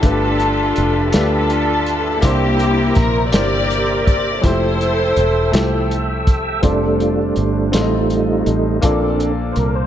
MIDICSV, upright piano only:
0, 0, Header, 1, 2, 480
1, 0, Start_track
1, 0, Key_signature, -1, "major"
1, 0, Tempo, 733496
1, 25, Time_signature, 6, 3, 24, 8
1, 6457, End_track
2, 0, Start_track
2, 0, Title_t, "Upright piano"
2, 0, Program_c, 0, 0
2, 0, Control_c, 0, 64, 127
2, 14, Note_on_c, 0, 57, 69
2, 18, Note_on_c, 0, 62, 58
2, 22, Note_on_c, 0, 43, 56
2, 27, Note_on_c, 0, 65, 58
2, 32, Note_on_c, 0, 67, 61
2, 34, Control_c, 0, 64, 0
2, 38, Note_on_c, 0, 71, 74
2, 134, Control_c, 0, 64, 127
2, 477, Note_off_c, 0, 57, 0
2, 479, Note_off_c, 0, 62, 0
2, 484, Note_off_c, 0, 65, 0
2, 487, Note_off_c, 0, 67, 0
2, 489, Note_off_c, 0, 71, 0
2, 718, Note_off_c, 0, 43, 0
2, 740, Note_on_c, 0, 57, 63
2, 746, Note_on_c, 0, 62, 51
2, 749, Note_on_c, 0, 65, 58
2, 757, Note_on_c, 0, 67, 53
2, 761, Note_on_c, 0, 71, 64
2, 1201, Note_off_c, 0, 57, 0
2, 1203, Note_off_c, 0, 62, 0
2, 1205, Note_off_c, 0, 65, 0
2, 1209, Note_off_c, 0, 67, 0
2, 1211, Note_off_c, 0, 71, 0
2, 1449, Note_on_c, 0, 58, 68
2, 1455, Note_on_c, 0, 62, 69
2, 1461, Note_on_c, 0, 48, 54
2, 1465, Note_on_c, 0, 64, 60
2, 1466, Note_on_c, 0, 67, 64
2, 1472, Note_on_c, 0, 72, 83
2, 1475, Control_c, 0, 64, 0
2, 1575, Control_c, 0, 64, 127
2, 1915, Note_off_c, 0, 58, 0
2, 1918, Note_off_c, 0, 62, 0
2, 1923, Note_off_c, 0, 64, 0
2, 1924, Note_off_c, 0, 67, 0
2, 1927, Note_off_c, 0, 72, 0
2, 2157, Note_off_c, 0, 48, 0
2, 2172, Note_on_c, 0, 58, 57
2, 2177, Note_on_c, 0, 62, 55
2, 2178, Note_on_c, 0, 64, 55
2, 2184, Note_on_c, 0, 67, 57
2, 2192, Note_on_c, 0, 72, 69
2, 2636, Note_off_c, 0, 58, 0
2, 2639, Note_off_c, 0, 62, 0
2, 2639, Note_off_c, 0, 64, 0
2, 2642, Note_off_c, 0, 67, 0
2, 2646, Note_off_c, 0, 72, 0
2, 2890, Note_on_c, 0, 56, 55
2, 2893, Note_on_c, 0, 64, 65
2, 2897, Note_on_c, 0, 53, 65
2, 2902, Note_on_c, 0, 67, 67
2, 2910, Note_on_c, 0, 72, 78
2, 2915, Control_c, 0, 64, 0
2, 2929, Note_on_c, 0, 57, 68
2, 2940, Note_off_c, 0, 56, 0
2, 3022, Control_c, 0, 64, 127
2, 3357, Note_off_c, 0, 64, 0
2, 3359, Note_off_c, 0, 53, 0
2, 3361, Note_off_c, 0, 67, 0
2, 3365, Note_off_c, 0, 72, 0
2, 3375, Note_off_c, 0, 57, 0
2, 3610, Note_on_c, 0, 57, 75
2, 3617, Note_on_c, 0, 64, 66
2, 3626, Note_on_c, 0, 53, 63
2, 3626, Note_on_c, 0, 67, 63
2, 3631, Note_on_c, 0, 69, 79
2, 4075, Note_off_c, 0, 57, 0
2, 4078, Note_off_c, 0, 64, 0
2, 4083, Note_off_c, 0, 53, 0
2, 4083, Note_off_c, 0, 67, 0
2, 4085, Note_off_c, 0, 69, 0
2, 4335, Note_on_c, 0, 60, 66
2, 4339, Note_on_c, 0, 62, 59
2, 4347, Note_on_c, 0, 65, 60
2, 4350, Note_on_c, 0, 69, 56
2, 4353, Control_c, 0, 64, 0
2, 4356, Note_on_c, 0, 74, 67
2, 4452, Control_c, 0, 64, 127
2, 4797, Note_off_c, 0, 60, 0
2, 4799, Note_off_c, 0, 62, 0
2, 4803, Note_off_c, 0, 65, 0
2, 4804, Note_off_c, 0, 69, 0
2, 4808, Note_off_c, 0, 74, 0
2, 5052, Note_on_c, 0, 60, 57
2, 5053, Note_on_c, 0, 63, 51
2, 5059, Note_on_c, 0, 45, 50
2, 5063, Note_on_c, 0, 65, 53
2, 5067, Note_on_c, 0, 69, 54
2, 5070, Note_on_c, 0, 74, 52
2, 5073, Control_c, 0, 64, 0
2, 5109, Note_off_c, 0, 74, 0
2, 5111, Note_on_c, 0, 75, 58
2, 5180, Control_c, 0, 64, 127
2, 5515, Note_off_c, 0, 60, 0
2, 5516, Note_off_c, 0, 63, 0
2, 5521, Note_off_c, 0, 65, 0
2, 5523, Note_off_c, 0, 69, 0
2, 5545, Note_off_c, 0, 75, 0
2, 5755, Note_off_c, 0, 45, 0
2, 5769, Note_on_c, 0, 58, 79
2, 5776, Note_on_c, 0, 62, 72
2, 5779, Note_on_c, 0, 65, 78
2, 5780, Note_on_c, 0, 46, 67
2, 5785, Note_on_c, 0, 69, 78
2, 5793, Control_c, 0, 64, 0
2, 5794, Note_on_c, 0, 74, 88
2, 5919, Control_c, 0, 64, 127
2, 6234, Note_off_c, 0, 58, 0
2, 6237, Note_off_c, 0, 62, 0
2, 6238, Note_off_c, 0, 65, 0
2, 6241, Note_off_c, 0, 69, 0
2, 6246, Note_off_c, 0, 74, 0
2, 6457, Note_off_c, 0, 46, 0
2, 6457, End_track
0, 0, End_of_file